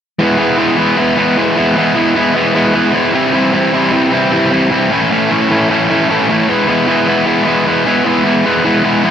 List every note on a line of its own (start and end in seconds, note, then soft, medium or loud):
0.19 0.37 E3 medium
0.19 0.38 G#3 medium
0.19 0.39 B3 medium
0.19 0.39 E4 medium
0.38 0.57 E3 medium
0.38 0.57 G#3 medium
0.38 0.58 B3 medium
0.38 0.58 E4 medium
0.57 0.77 E3 medium
0.57 0.77 G#3 medium
0.57 0.78 B3 medium
0.57 0.79 E4 medium
0.77 0.97 E3 medium
0.77 0.96 G#3 medium
0.77 0.97 B3 medium
0.77 0.98 E4 medium
0.97 1.16 E3 medium
0.97 1.17 G#3 medium
0.97 1.17 B3 medium
0.97 1.19 E4 medium
1.17 1.37 E3 medium
1.17 1.37 G#3 medium
1.17 1.37 B3 medium
1.17 1.39 E4 medium
1.37 1.56 E3 medium
1.37 1.56 G#3 medium
1.37 1.57 B3 medium
1.37 1.58 E4 medium
1.56 1.76 E3 medium
1.56 1.76 G#3 medium
1.56 1.76 B3 medium
1.56 1.78 E4 medium
1.76 1.95 E3 medium
1.76 1.95 G#3 medium
1.76 1.95 B3 medium
1.76 1.96 E4 loud
1.95 2.14 E3 medium
1.95 2.14 G#3 medium
1.95 2.15 B3 medium
1.95 2.16 E4 medium
2.15 2.34 E3 medium
2.15 2.34 G#3 medium
2.15 2.35 B3 medium
2.15 2.36 E4 medium
2.35 2.54 E3 medium
2.35 2.54 G#3 medium
2.35 2.55 B3 medium
2.35 2.56 E4 medium
2.55 2.74 E3 medium
2.55 2.74 G#3 medium
2.55 2.74 B3 medium
2.55 2.75 E4 medium
2.74 2.92 E3 medium
2.74 2.93 G#3 medium
2.74 2.93 B3 medium
2.74 2.94 E4 medium
2.93 3.13 E3 medium
2.93 3.13 G#3 medium
2.93 3.13 B3 medium
2.93 3.15 E4 medium
3.13 3.31 C3 medium
3.13 3.33 E3 medium
3.13 3.32 G3 medium
3.13 3.33 C4 medium
3.13 3.34 E4 loud
3.33 3.51 C3 medium
3.33 3.53 E3 medium
3.33 3.52 G3 medium
3.33 3.53 C4 medium
3.33 3.54 E4 medium
3.52 3.70 C3 medium
3.52 3.72 E3 medium
3.52 3.72 G3 medium
3.52 3.73 C4 medium
3.52 3.74 E4 medium
3.72 3.90 C3 medium
3.72 3.92 E3 medium
3.72 3.92 G3 medium
3.72 3.92 C4 medium
3.72 3.94 E4 medium
3.91 4.10 C3 medium
3.91 4.11 E3 medium
3.91 4.11 G3 medium
3.91 4.12 C4 medium
3.91 4.13 E4 medium
4.11 4.30 C3 medium
4.11 4.31 E3 medium
4.11 4.31 G3 medium
4.11 4.32 C4 medium
4.11 4.33 E4 medium
4.31 4.49 C3 medium
4.31 4.51 E3 medium
4.31 4.51 G3 medium
4.31 4.51 C4 medium
4.31 4.53 E4 medium
4.51 4.69 C3 medium
4.51 4.71 E3 medium
4.51 4.71 G3 medium
4.51 4.71 C4 medium
4.51 4.72 E4 medium
4.71 4.90 C3 medium
4.71 4.91 E3 medium
4.71 4.90 G3 medium
4.71 4.90 C4 medium
4.71 4.92 E4 medium
4.90 5.09 A2 medium
4.90 5.11 E3 medium
4.90 5.10 A3 medium
4.90 5.11 C#4 medium
4.90 5.12 E4 medium
5.10 5.29 A2 medium
5.10 5.30 E3 medium
5.10 5.30 A3 medium
5.10 5.31 C#4 medium
5.10 5.32 E4 medium
5.30 5.49 A2 medium
5.30 5.50 E3 medium
5.30 5.50 A3 medium
5.30 5.50 C#4 medium
5.30 5.52 E4 medium
5.50 5.68 A2 medium
5.50 5.70 E3 medium
5.50 5.69 A3 medium
5.50 5.70 C#4 medium
5.50 5.71 E4 medium
5.69 5.88 A2 medium
5.69 5.89 E3 medium
5.69 5.89 A3 medium
5.69 5.89 C#4 medium
5.69 5.91 E4 medium
5.89 6.07 A2 medium
5.89 6.09 E3 medium
5.89 6.09 A3 medium
5.89 6.09 C#4 medium
5.89 6.11 E4 medium
6.08 6.27 A2 medium
6.08 6.29 E3 medium
6.08 6.28 A3 medium
6.08 6.29 C#4 medium
6.08 6.30 E4 medium
6.29 6.47 A2 medium
6.29 6.47 E3 medium
6.29 6.48 A3 medium
6.29 6.48 C#4 medium
6.29 6.49 E4 medium
6.48 6.67 E3 medium
6.48 6.68 G#3 medium
6.48 6.68 B3 medium
6.48 6.69 E4 medium
6.67 6.86 E3 medium
6.67 6.87 G#3 medium
6.67 6.88 B3 loud
6.67 6.88 E4 medium
6.87 7.06 E3 medium
6.87 7.06 G#3 medium
6.87 7.07 B3 medium
6.87 7.08 E4 medium
7.07 7.25 E3 medium
7.07 7.25 G#3 medium
7.07 7.26 B3 medium
7.07 7.27 E4 medium
7.26 7.45 E3 medium
7.26 7.46 G#3 medium
7.26 7.46 B3 medium
7.26 7.47 E4 medium
7.46 7.66 E3 medium
7.46 7.66 G#3 medium
7.46 7.67 B3 medium
7.46 7.68 E4 medium
7.66 7.85 E3 medium
7.66 7.85 G#3 medium
7.66 7.85 B3 medium
7.66 7.87 E4 medium
7.85 8.04 E3 medium
7.85 8.04 G#3 medium
7.85 8.05 B3 medium
7.85 8.06 E4 medium
8.05 8.24 E3 medium
8.05 8.24 G#3 medium
8.05 8.24 B3 medium
8.05 8.26 E4 medium
8.24 8.44 E3 medium
8.24 8.44 G#3 medium
8.24 8.45 B3 medium
8.24 8.46 E4 medium
8.45 8.64 E3 medium
8.45 8.64 G#3 medium
8.45 8.65 B3 medium
8.45 8.66 E4 medium
8.65 8.83 E3 medium
8.65 8.83 G#3 medium
8.65 8.84 B3 medium
8.65 8.85 E4 medium
8.84 9.03 E3 medium
8.84 9.03 G#3 medium
8.84 9.04 B3 medium
8.84 9.05 E4 medium
9.03 9.11 E3 medium
9.03 9.11 G#3 medium
9.03 9.11 B3 medium
9.03 9.11 E4 medium